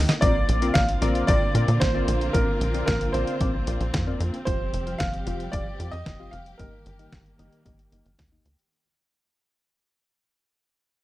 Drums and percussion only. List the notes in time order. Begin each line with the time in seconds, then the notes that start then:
0.09 snare, closed hi-hat, tambourine
0.22 kick, closed hi-hat
0.49 closed hi-hat
0.62 closed hi-hat
0.75 kick, snare, closed hi-hat
0.89 closed hi-hat
1.02 closed hi-hat
1.15 closed hi-hat
1.28 kick, closed hi-hat
1.55 closed hi-hat
1.68 closed hi-hat
1.81 kick, snare, closed hi-hat
2.08 closed hi-hat
2.21 closed hi-hat
2.34 kick, closed hi-hat
2.61 closed hi-hat
2.74 closed hi-hat
2.87 kick, snare, closed hi-hat
3.01 closed hi-hat
3.14 closed hi-hat
3.27 closed hi-hat
3.41 kick, closed hi-hat
3.67 closed hi-hat
3.81 closed hi-hat
3.94 kick, snare, closed hi-hat
4.20 closed hi-hat
4.34 closed hi-hat
4.47 kick, closed hi-hat
4.74 closed hi-hat
4.87 closed hi-hat
5.00 kick, snare, closed hi-hat
5.13 closed hi-hat
5.27 closed hi-hat
5.40 closed hi-hat
5.53 kick, closed hi-hat
5.80 closed hi-hat
5.93 closed hi-hat
6.06 kick, snare, closed hi-hat
6.33 closed hi-hat
6.46 closed hi-hat
6.59 kick, closed hi-hat
6.86 closed hi-hat
6.99 closed hi-hat
7.12 kick, snare, closed hi-hat
7.26 closed hi-hat
7.39 closed hi-hat
7.53 closed hi-hat
7.66 kick, closed hi-hat
7.79 closed hi-hat
7.92 closed hi-hat
8.06 closed hi-hat
8.19 kick, snare, closed hi-hat
8.46 closed hi-hat
8.59 closed hi-hat